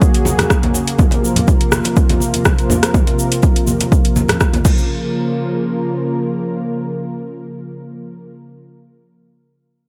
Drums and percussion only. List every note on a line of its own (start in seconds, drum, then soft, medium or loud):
0.02 kick loud
0.02 shaker soft
0.14 closed hi-hat soft
0.14 shaker soft
0.25 muted conga soft
0.25 high conga medium
0.25 shaker medium
0.38 cross-stick medium
0.38 closed hi-hat medium
0.38 high conga medium
0.38 low conga medium
0.38 shaker soft
0.50 kick loud
0.50 cross-stick medium
0.50 shaker medium
0.63 closed hi-hat soft
0.63 high conga medium
0.63 shaker soft
0.74 muted conga soft
0.74 shaker medium
0.88 closed hi-hat medium
0.88 shaker soft
0.99 kick loud
0.99 high conga medium
0.99 shaker soft
1.11 closed hi-hat soft
1.11 muted conga medium
1.11 shaker soft
1.25 shaker medium
1.36 closed hi-hat medium
1.36 low conga medium
1.36 shaker soft
1.48 kick loud
1.48 muted conga soft
1.48 shaker medium
1.61 closed hi-hat soft
1.61 shaker soft
1.72 cross-stick medium
1.72 high conga medium
1.72 shaker medium
1.84 closed hi-hat medium
1.84 muted conga soft
1.84 shaker soft
1.96 kick loud
1.96 shaker soft
2.09 closed hi-hat soft
2.09 high conga loud
2.09 shaker soft
2.20 muted conga soft
2.20 shaker medium
2.34 closed hi-hat medium
2.34 high conga medium
2.34 shaker soft
2.45 kick medium
2.45 cross-stick medium
2.45 shaker soft
2.58 closed hi-hat soft
2.58 shaker soft
2.70 muted conga medium
2.70 high conga medium
2.70 low conga medium
2.70 shaker medium
2.83 cross-stick medium
2.83 closed hi-hat medium
2.83 shaker soft
2.94 kick loud
2.94 high conga medium
2.94 shaker soft
3.07 closed hi-hat soft
3.07 muted conga soft
3.07 shaker soft
3.19 shaker medium
3.32 closed hi-hat medium
3.32 shaker soft
3.43 kick loud
3.43 muted conga soft
3.43 shaker soft
3.56 closed hi-hat soft
3.56 shaker soft
3.67 high conga medium
3.67 shaker medium
3.80 closed hi-hat medium
3.80 muted conga soft
3.80 shaker soft
3.92 kick loud
3.92 shaker soft
4.05 closed hi-hat soft
4.05 shaker soft
4.16 muted conga soft
4.16 high conga medium
4.16 shaker medium
4.28 cross-stick medium
4.28 closed hi-hat medium
4.28 high conga medium
4.28 low conga medium
4.28 shaker soft
4.40 kick medium
4.40 cross-stick medium
4.40 shaker soft
4.53 closed hi-hat soft
4.53 high conga loud
4.53 shaker soft
4.65 kick loud
4.65 crash medium
4.65 muted conga medium
4.65 shaker medium
4.78 shaker soft